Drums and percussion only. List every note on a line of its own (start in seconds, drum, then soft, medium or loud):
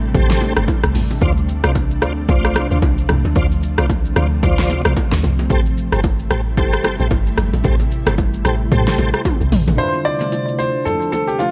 0.15 kick loud
0.15 high bongo medium
0.15 low conga medium
0.15 shaker medium
0.30 snare medium
0.30 shaker medium
0.41 high bongo medium
0.41 low bongo medium
0.41 shaker medium
0.57 cross-stick loud
0.57 shaker medium
0.68 kick loud
0.68 high bongo medium
0.68 shaker medium
0.84 cross-stick medium
0.84 shaker medium
0.95 open hi-hat medium
0.95 low conga medium
0.95 shaker loud
1.10 low bongo medium
1.10 shaker medium
1.21 kick loud
1.21 low conga medium
1.21 shaker medium
1.37 shaker soft
1.49 shaker medium
1.64 cross-stick loud
1.64 shaker medium
1.75 kick medium
1.75 high bongo medium
1.75 shaker medium
1.91 shaker medium
2.02 cross-stick medium
2.02 shaker loud
2.29 kick loud
2.29 high bongo medium
2.29 low conga medium
2.29 shaker medium
2.44 cross-stick medium
2.44 shaker medium
2.55 cross-stick loud
2.55 high bongo medium
2.55 low bongo medium
2.55 shaker medium
2.71 shaker medium
2.82 kick loud
2.82 high bongo medium
2.82 shaker medium
2.98 shaker medium
3.09 cross-stick medium
3.09 low conga medium
3.09 shaker loud
3.25 low bongo medium
3.25 shaker soft
3.35 kick loud
3.35 low conga medium
3.35 shaker medium
3.51 shaker medium
3.63 shaker medium
3.78 cross-stick loud
3.78 shaker medium
3.89 kick loud
3.89 high bongo medium
3.89 shaker medium
4.05 shaker medium
4.16 cross-stick medium
4.16 shaker medium
4.43 kick loud
4.43 high bongo medium
4.43 low conga medium
4.43 shaker medium
4.58 snare medium
4.58 shaker medium
4.70 high bongo soft
4.70 low bongo medium
4.70 shaker medium
4.85 cross-stick loud
4.85 shaker medium
4.96 kick loud
4.96 high bongo medium
4.96 shaker medium
5.12 snare medium
5.12 shaker medium
5.24 low conga medium
5.24 shaker loud
5.39 low bongo medium
5.39 shaker medium
5.50 kick loud
5.50 low conga medium
5.50 shaker medium
5.66 shaker medium
5.77 shaker medium
5.92 cross-stick medium
5.92 shaker medium
6.04 kick medium
6.04 high bongo medium
6.04 shaker medium
6.19 shaker medium
6.31 cross-stick medium
6.31 shaker loud
6.57 kick loud
6.57 high bongo medium
6.57 low conga medium
6.57 shaker medium
6.73 cross-stick loud
6.73 shaker medium
6.84 cross-stick loud
6.84 high bongo medium
6.84 low bongo medium
6.84 shaker medium
7.00 shaker medium
7.11 kick loud
7.11 high bongo medium
7.11 shaker medium
7.27 shaker medium
7.38 cross-stick medium
7.38 low conga medium
7.38 shaker loud
7.53 low bongo medium
7.53 shaker medium
7.64 kick loud
7.64 low conga medium
7.64 shaker medium
7.80 low bongo medium
7.80 shaker medium
7.92 shaker medium
8.07 cross-stick loud
8.07 low bongo medium
8.07 shaker medium
8.18 kick loud
8.18 high bongo medium
8.18 shaker medium
8.34 shaker medium
8.45 cross-stick medium
8.45 shaker loud
8.72 kick loud
8.72 high bongo medium
8.72 low conga medium
8.72 shaker medium
8.87 snare medium
8.87 shaker medium
8.98 high bongo medium
8.98 low bongo medium
8.98 shaker medium
9.14 cross-stick medium
9.14 shaker medium
9.25 kick loud
9.25 high tom medium
9.25 high bongo medium
9.25 shaker medium
9.41 shaker medium
9.52 mid tom medium
9.52 open hi-hat medium
9.52 low conga medium
9.52 shaker loud
9.68 floor tom loud
9.68 low bongo medium
9.68 shaker medium
9.78 low conga medium
9.78 shaker medium
9.94 low bongo soft
9.94 shaker soft
10.06 shaker medium
10.21 low bongo medium
10.21 shaker soft
10.32 high bongo medium
10.32 shaker medium
10.48 shaker soft
10.59 shaker medium
10.86 low conga medium
10.86 shaker medium
11.01 shaker soft
11.13 high bongo soft
11.13 low bongo medium
11.13 shaker medium
11.28 shaker soft
11.39 high bongo medium
11.39 shaker medium